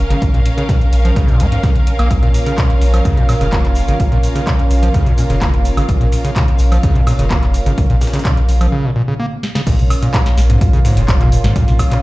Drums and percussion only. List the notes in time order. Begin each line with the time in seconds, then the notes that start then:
0.10 closed hi-hat
0.22 kick, closed hi-hat
0.34 closed hi-hat
0.45 closed hi-hat
0.58 snare, closed hi-hat
0.69 kick, snare, closed hi-hat
0.81 closed hi-hat
0.93 closed hi-hat, open hi-hat
1.05 closed hi-hat
1.16 kick, closed hi-hat
1.28 closed hi-hat
1.40 closed hi-hat
1.52 snare, closed hi-hat
1.63 kick, snare, closed hi-hat
1.76 closed hi-hat
1.87 closed hi-hat
1.99 closed hi-hat, high woodblock
2.11 kick, closed hi-hat, shaker
2.23 closed hi-hat
2.34 closed hi-hat, open hi-hat, shaker
2.46 closed hi-hat, shaker
2.58 kick, snare, clap, closed hi-hat, shaker
2.70 closed hi-hat
2.81 closed hi-hat, open hi-hat, shaker
2.94 closed hi-hat, high woodblock, shaker
3.05 kick, closed hi-hat, shaker
3.17 closed hi-hat
3.29 snare, closed hi-hat, open hi-hat, high woodblock, shaker
3.41 snare, closed hi-hat, shaker
3.52 kick, snare, clap, closed hi-hat, shaker
3.65 clap, closed hi-hat
3.75 closed hi-hat, open hi-hat, shaker
3.88 closed hi-hat, shaker
4.00 kick, closed hi-hat, shaker
4.12 closed hi-hat
4.23 closed hi-hat, open hi-hat, shaker
4.35 snare, closed hi-hat, shaker
4.47 kick, snare, clap, closed hi-hat, shaker
4.59 closed hi-hat
4.71 open hi-hat, shaker
4.83 closed hi-hat, shaker
4.94 kick, closed hi-hat, shaker
5.06 closed hi-hat
5.18 closed hi-hat, open hi-hat, shaker
5.29 snare, closed hi-hat, shaker
5.41 kick, snare, clap, closed hi-hat, shaker
5.54 closed hi-hat
5.65 closed hi-hat, open hi-hat, shaker
5.77 closed hi-hat, high woodblock, shaker
5.89 kick, closed hi-hat, shaker
6.01 closed hi-hat
6.12 closed hi-hat, open hi-hat, shaker
6.25 closed hi-hat, shaker
6.36 kick, snare, clap, closed hi-hat, shaker
6.48 closed hi-hat
6.59 closed hi-hat, open hi-hat, shaker
6.72 closed hi-hat, high woodblock, shaker
6.83 kick, closed hi-hat, shaker
6.95 closed hi-hat
7.07 snare, closed hi-hat, open hi-hat, high woodblock, shaker
7.19 snare, closed hi-hat, shaker
7.30 kick, snare, clap, closed hi-hat, shaker
7.43 clap, closed hi-hat
7.54 closed hi-hat, open hi-hat, shaker
7.66 closed hi-hat, shaker
7.78 kick, closed hi-hat, shaker
7.90 closed hi-hat
8.01 snare, closed hi-hat, open hi-hat, shaker
8.07 snare, closed hi-hat
8.13 snare, clap, closed hi-hat, shaker
8.19 snare, closed hi-hat
8.25 kick, snare, clap, closed hi-hat, shaker
8.37 closed hi-hat
8.48 open hi-hat, shaker
8.61 closed hi-hat, high woodblock, shaker
9.43 snare
9.55 snare
9.67 kick, closed hi-hat, crash, shaker
9.79 closed hi-hat, mid tom, shaker
9.90 closed hi-hat, open hi-hat, high woodblock, shaker
10.03 closed hi-hat, shaker
10.14 kick, snare, clap, closed hi-hat, shaker
10.26 snare, closed hi-hat
10.38 snare, closed hi-hat, open hi-hat, shaker
10.50 closed hi-hat, mid tom, shaker
10.61 kick, closed hi-hat, shaker
10.73 closed hi-hat, mid tom, shaker
10.85 snare, closed hi-hat, open hi-hat, shaker
10.97 snare, closed hi-hat, shaker
11.08 kick, snare, clap, closed hi-hat, shaker
11.21 clap, closed hi-hat, mid tom
11.32 closed hi-hat, open hi-hat, shaker
11.44 snare, closed hi-hat, shaker
11.56 kick, closed hi-hat, shaker
11.68 snare, closed hi-hat, mid tom, shaker
11.79 kick, closed hi-hat, open hi-hat, high woodblock, shaker
11.91 snare, clap, closed hi-hat, shaker